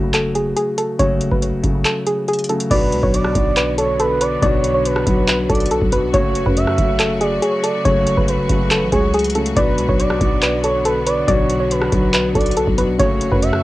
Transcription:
Already playing: F#1 C#3 F#3 A3 F#4 B4
0.14 A4, clap, closed hi-hat
0.35 G#4, closed hi-hat
0.57 G#4, closed hi-hat
0.78 A4, closed hi-hat
0.99 F#1 C#3 F#3 A3 F#4 C#5, kick, closed hi-hat
1.21 closed hi-hat
1.32 F#1 B4, kick
1.42 closed hi-hat
1.63 F#1 C#3 F#3 A3 F#4, kick, closed hi-hat
1.85 A4, clap, closed hi-hat
2.07 G#4, closed hi-hat
2.28 G#4, closed hi-hat
2.33 closed hi-hat
2.39 closed hi-hat
2.44 closed hi-hat
2.49 C#3 F#3 A3 F#4 A4, closed hi-hat, open hi-hat
2.60 closed hi-hat
2.70 B1 B2 D3 F#3 B3 D4 F#4 B4 D5, kick, closed hi-hat, crash
2.92 C#2, closed hi-hat
3.03 B1 C#5, kick
3.14 D5, closed hi-hat
3.24 cross-stick
3.34 B1 B2 F#3 D4 F#4, kick, closed hi-hat
3.57 B4, clap, closed hi-hat
3.78 A4 C#5, closed hi-hat
4.00 A4 B4, closed hi-hat
4.21 B4 D5, closed hi-hat
4.42 B1 B2 F#3 D4 F#4 C#5 D5, kick, closed hi-hat
4.64 closed hi-hat
4.74 C#5
4.85 B4, closed hi-hat
4.96 cross-stick
5.06 B1 B2 F#3 D4 F#4, kick, closed hi-hat
5.28 B4, clap, closed hi-hat
5.49 B1 A4 D5, kick, closed hi-hat
5.55 closed hi-hat
5.60 closed hi-hat
5.66 closed hi-hat
5.71 A4, closed hi-hat
5.82 B1, kick
5.91 B2 F#3 D4 F#4 B4, closed hi-hat
6.13 F#1 C#3 F#3 A3 F#4 C#5, kick, closed hi-hat
6.35 closed hi-hat
6.46 F#2 B4, kick
6.57 E5, closed hi-hat
6.67 cross-stick
6.78 F#1 C#3 F#3 A3 F#4, kick, closed hi-hat
7.00 A4, clap, closed hi-hat
7.21 G#4 D5, closed hi-hat
7.42 G#4 C#5, closed hi-hat
7.64 A4 D5, closed hi-hat
7.85 F#1 C#3 F#3 A3 F#4 C#5, kick, closed hi-hat
8.07 closed hi-hat
8.17 F#1 B4, kick
8.28 B4, closed hi-hat
8.49 F#1 C#3 F#3 A3 F#4, kick, closed hi-hat
8.71 A4, clap, closed hi-hat
8.82 A1
8.92 C#2 G#4 C#5, kick, closed hi-hat
9.14 G#4, closed hi-hat
9.19 closed hi-hat
9.25 closed hi-hat
9.30 closed hi-hat
9.34 C#3 F#3 A3 F#4 A4, closed hi-hat, open hi-hat
9.46 closed hi-hat
9.56 B1 B2 D3 F#3 B3 D4 F#4 B4 D5, kick, closed hi-hat
9.78 C#2, closed hi-hat
9.89 B1 C#5, kick
10.00 D5, closed hi-hat
10.10 cross-stick
10.20 B1 B2 F#3 D4 F#4, kick, closed hi-hat
10.42 B4, clap, closed hi-hat
10.64 A4 C#5, closed hi-hat
10.85 A4 B4, closed hi-hat
11.07 B4 D5, closed hi-hat
11.27 B1 B2 F#3 D4 F#4 C#5 D5, kick, closed hi-hat
11.50 closed hi-hat
11.60 C#5
11.71 B4, closed hi-hat
11.82 cross-stick
11.92 B1 B2 F#3 D4 F#4, kick, closed hi-hat
12.14 B4, clap, closed hi-hat
12.35 B1 A4 D5, kick, closed hi-hat
12.41 closed hi-hat
12.46 closed hi-hat
12.51 closed hi-hat
12.57 A4, closed hi-hat
12.67 B1, kick
12.77 B2 F#3 D4 F#4 B4, closed hi-hat
12.98 F#1 C#3 F#3 A3 F#4 C#5, kick, closed hi-hat
13.21 closed hi-hat
13.32 F#2 B4, kick
13.42 E5, closed hi-hat
13.53 cross-stick

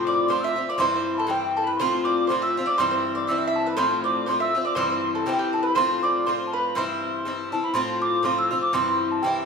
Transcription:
Already playing: A2 F3 C4 F4
0.05 D5 D6
0.26 A2 F3 C4 C5 C6
0.32 F4 C6
0.40 E6
0.44 E5
0.56 F3 C4 F4
0.69 D5 D6
0.76 G2 E3 C4 C6
0.80 E4 C5 C6
0.89 C6
0.95 C5 C6
1.14 A5 B5
1.19 A4
1.27 G2 E3 C4 E4 G4 G5
1.57 A4 A5
1.64 B4 B5
1.75 C6
1.79 A2 F3 C4 F4 C5 C6
2.05 D5 D6
2.27 A2 F3 C4 C5 C6
2.32 F4
2.42 E5 E6
2.57 F3 C4 F4
2.66 D5 D6
2.70 D6
2.78 G2 E3 C4 E4 C5 C6
2.91 C5 C6
3.15 D5 D6
3.27 G2 E3 C4 E4 E5 E6
3.38 E5
3.47 E5
3.56 A5
3.66 B4 B5
3.77 A2 F3 C4 F4 C5 C6
4.04 D5 D6
4.26 A2 F3 C4 C5 C6
4.31 F4
4.40 E5 E6
4.55 F3 C4 F4
4.65 D5 D6
4.75 G2 E3 C4 E4 C5 C6
4.90 C5 C6
5.15 A4 A5
5.26 G2 E3 C4 E4 G4 G5
5.33 G4
5.39 G4
5.53 A4 A5
5.57 A5
5.63 B4 B5
5.67 B5
5.75 A2 F3 C4 F4 C5 C6
6.03 D5 D6
6.25 A2 F3 C4 F4 C5 C6
6.47 A5
6.53 B4 B5
6.75 G2 E3 C4 E4 C5 C6
7.25 G2 E3 C4 E4
7.52 E3 C4 E4 A5
7.64 B5
7.74 A2 F3 C4 F4 C6
8.02 D6
8.23 A2 F3 C4 F4 C6
8.38 E6
8.51 F3 C4 F4
8.61 D6
8.73 G2 E3 C4 E4 C6
8.87 C6
9.11 A5
9.23 G2 E3 C4 E4 G5

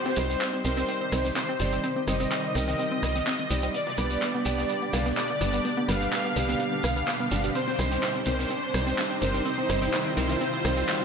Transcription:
Already playing: C3 D#3 G3 D#4 G4 C5, riser
0.06 C4, snare, closed hi-hat
0.16 C2 G3 C4 D#4 C5, cross-stick, closed hi-hat, open hi-hat, shekere
0.30 C4, closed hi-hat, shekere
0.41 C4, snare, clap, closed hi-hat, shekere
0.53 C4, closed hi-hat
0.65 C2 G3 C4 D#4 A#4 C5, closed hi-hat, open hi-hat, shekere
0.77 C4, snare, closed hi-hat, shekere
0.88 C4, closed hi-hat, shekere
1.01 C4, closed hi-hat
1.12 C2 G3 C4 D#4 D#5, cross-stick, snare, closed hi-hat, open hi-hat, shekere
1.25 C4, snare, closed hi-hat, shekere
1.36 C4 C5, snare, clap, closed hi-hat, shekere
1.49 C4, closed hi-hat
1.60 G1 G3 C4 D#4 D5, snare, closed hi-hat, open hi-hat, shekere
1.72 C4, closed hi-hat, shekere
1.83 C4 F4, closed hi-hat, shekere
1.96 C4, closed hi-hat
2.08 G1 G3 C4 D#4 C5 D#5, cross-stick, closed hi-hat, open hi-hat, shekere
2.20 C4, closed hi-hat, shekere
2.31 C4, snare, clap, closed hi-hat, shekere
2.44 C4, closed hi-hat
2.55 C2 G3 C4 D#4 A#4, closed hi-hat, open hi-hat, shekere
2.68 C4, snare, closed hi-hat, shekere
2.79 C4, closed hi-hat, shekere
2.92 C4, closed hi-hat
3.03 C2 G3 C4 D#4 D#5, cross-stick, closed hi-hat, open hi-hat, shekere
3.15 C4, closed hi-hat, shekere
3.26 C4, snare, clap, closed hi-hat, shekere
3.39 C4, closed hi-hat
3.50 C2 G3 C4 D#4 D5, open hi-hat, shekere
3.62 C4, closed hi-hat, open hi-hat, shekere
3.74 B2 D3 B3 D4 D5, closed hi-hat, shekere
3.87 B3, snare, closed hi-hat
3.98 C2 G3 B3 D4 B4, cross-stick, closed hi-hat, open hi-hat, shekere
4.10 B3, closed hi-hat, shekere
4.22 B3, snare, clap, closed hi-hat, shekere
4.34 B3, closed hi-hat
4.45 C2 G3 B3 D4 G4 D5, closed hi-hat, open hi-hat, shekere
4.58 B3, snare, closed hi-hat, shekere
4.69 B3, closed hi-hat, shekere
4.82 B3, closed hi-hat
4.93 C2 G3 B3 D4 F5, cross-stick, snare, closed hi-hat, open hi-hat, shekere
5.05 B3, snare, closed hi-hat, shekere
5.16 B3 D5, snare, clap, closed hi-hat, shekere
5.30 B3, closed hi-hat
5.41 G1 G3 B3 D4 D5, snare, closed hi-hat, open hi-hat, shekere
5.53 B3, closed hi-hat, shekere
5.65 B3, closed hi-hat, shekere
5.77 B3, closed hi-hat
5.88 G1 G3 B3 D4 B4 F5, cross-stick, closed hi-hat, open hi-hat, shekere
6.01 B3, closed hi-hat, shekere
6.12 B3, snare, clap, closed hi-hat, shekere
6.25 B3, closed hi-hat
6.36 C2 G3 B3 D4 G4, closed hi-hat, open hi-hat, shekere
6.49 B3, snare, closed hi-hat, shekere
6.60 B3, closed hi-hat, shekere
6.72 B3, closed hi-hat
6.83 C2 G3 B3 D4 B4 F5, cross-stick, closed hi-hat, open hi-hat, shekere
6.96 B3, closed hi-hat, shekere
7.07 B3, snare, clap, closed hi-hat, shekere
7.20 B3, closed hi-hat
7.31 G1 G3 B3 D4 D5, open hi-hat, shekere
7.44 G4, closed hi-hat, open hi-hat, shekere
7.55 C3 D#3 C4 D#4 C5, closed hi-hat, shekere
7.68 C4, snare, closed hi-hat
7.79 C2 G3 C4 D#4 C5, cross-stick, closed hi-hat, open hi-hat, shekere
7.91 C4, closed hi-hat, shekere
8.03 C4, snare, clap, closed hi-hat, shekere
8.15 C4, closed hi-hat
8.26 C2 G3 C4 D#4 A#4 C5, closed hi-hat, open hi-hat, shekere
8.39 C4, snare, closed hi-hat, shekere
8.50 C4 C5, closed hi-hat, shekere
8.63 C4, closed hi-hat
8.74 C2 G3 C4 D#4 C5, cross-stick, snare, closed hi-hat, open hi-hat, shekere
8.87 C4, snare, closed hi-hat, shekere
8.97 C4, snare, clap, closed hi-hat, shekere
9.11 C4, closed hi-hat
9.22 G1 G3 C4 D#4 A#4 C5, snare, closed hi-hat, open hi-hat, shekere
9.34 C4, closed hi-hat, shekere
9.45 C4 F4 C5, closed hi-hat, shekere
9.58 C4, closed hi-hat
9.69 G1 G3 C4 D#4 C5, cross-stick, closed hi-hat, open hi-hat, shekere
9.82 C4, closed hi-hat, shekere
9.93 C4, snare, clap, closed hi-hat, shekere
10.06 C4, closed hi-hat
10.17 C2 G3 C4 D#4 A#4 C5, closed hi-hat, open hi-hat, shekere
10.29 C4, snare, closed hi-hat, shekere
10.41 C4 C5, closed hi-hat, shekere
10.53 C4, closed hi-hat
10.65 C2 G3 C4 D#4 C5, cross-stick, closed hi-hat, open hi-hat, shekere
10.77 C4, closed hi-hat, shekere
10.88 C4, snare, clap, closed hi-hat, shekere
11.01 C4, closed hi-hat

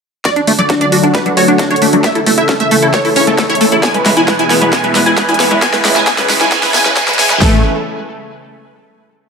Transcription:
0.25 D3 F#3 A3 F#4 D5, kick, snare, closed hi-hat, riser
0.36 D4, closed hi-hat
0.47 D2 A3 D4, open hi-hat
0.59 D2 F#3 D5, closed hi-hat
0.70 D4 F#4, kick, snare, closed hi-hat
0.81 D2 D4 D5, closed hi-hat
0.92 D4 F#4, open hi-hat
1.03 D2 D4, closed hi-hat
1.15 A3 B4, kick, snare, closed hi-hat
1.26 F#3 D4, closed hi-hat
1.37 D2 F#4 C#5, open hi-hat
1.48 D1 D4, closed hi-hat
1.59 D4 F#4, kick, snare, closed hi-hat
1.71 A1 D4 C#5, closed hi-hat
1.76 closed hi-hat
1.82 A3 D4, open hi-hat
1.93 D2 F#3 D4, closed hi-hat
2.04 C#3 E3 A3 E4 E5, kick, snare, closed hi-hat
2.15 E4 A4, closed hi-hat
2.26 A1 A3 A4, open hi-hat
2.38 A1 E4 E5, closed hi-hat
2.49 C#4 A4, kick, snare, closed hi-hat
2.60 A1 A3 E5, closed hi-hat
2.71 A3 A4, open hi-hat
2.82 A1 E4 A4, closed hi-hat
2.94 A3 C#5, kick, snare, closed hi-hat
3.05 E4 A4, open hi-hat
3.16 A1 C#4 C#5, open hi-hat
3.27 A2 A3 A4, closed hi-hat
3.38 A3 A4, kick, snare, closed hi-hat
3.50 E1 E4 C#5, closed hi-hat
3.55 closed hi-hat
3.61 A3 A4, open hi-hat
3.72 A1 E4 A4, closed hi-hat
3.83 B2 G#3 B3 G#5, kick, snare, closed hi-hat
3.94 G#3 B4, closed hi-hat
4.06 E2 G#3 B4, snare, open hi-hat
4.17 E2 E4 G#5, closed hi-hat
4.28 G#3 B4, kick, snare, closed hi-hat
4.39 E2 E4 G#5, closed hi-hat
4.50 B3 B4, snare, open hi-hat
4.61 E2 G#3 B4, closed hi-hat
4.73 B3 G#5, kick, snare, closed hi-hat
4.84 G#3 B4, closed hi-hat
4.95 E2 G#3 B4, snare, open hi-hat
5.06 E1 E4 G#5, closed hi-hat
5.17 G#3 B4, kick, snare, closed hi-hat
5.29 D2 E4 G#5, closed hi-hat
5.34 closed hi-hat
5.40 B3 B4, snare, open hi-hat
5.51 E2 G#3 B4, closed hi-hat
5.62 C#3 G#3 B3 G#5, kick, snare, closed hi-hat
5.73 G#3 B4, snare, closed hi-hat
5.85 C#2 G#3 B4, snare, open hi-hat
5.96 C#2 E4 G#5, snare, closed hi-hat
6.07 B3 G#5, kick, snare, closed hi-hat
6.18 C#2 G#3 B4, snare, closed hi-hat
6.29 G#3 B4, snare, open hi-hat
6.41 C#2 E4 G#5, snare, closed hi-hat
6.52 B3 G#5, kick, snare, closed hi-hat
6.63 G#3 B4, snare, open hi-hat
6.74 C#2 B3 G#5, snare, open hi-hat
6.85 C#2 G#3 B4, snare
6.97 B3 G#5, kick, snare, closed hi-hat
7.08 G#1 G#3 B4, snare, closed hi-hat
7.13 closed hi-hat
7.19 B3 G#5, snare, open hi-hat
7.30 C#2 G#3 B4, snare
7.41 A1 C#3 E3 A3 E4 A4, kick, snare, open hi-hat

